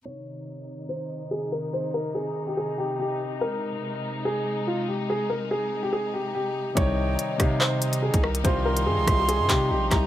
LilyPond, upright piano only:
\new Staff \with { instrumentName = "Upright piano" } { \time 4/4 \key c \phrygian \tempo 4 = 143 des''2 c''4 aes'8 bes'8 | c''8 bes'8 aes'8. g'16 aes'8 g'8 g'4 | bes'2 aes'4 f'8 g'8 | aes'8 bes'8 aes'8. g'16 aes'8 g'8 g'4 |
des''2 c''4 aes'8 bes'8 | c''8 bes'8 aes'8. g'16 aes'8 g'8 g'4 | }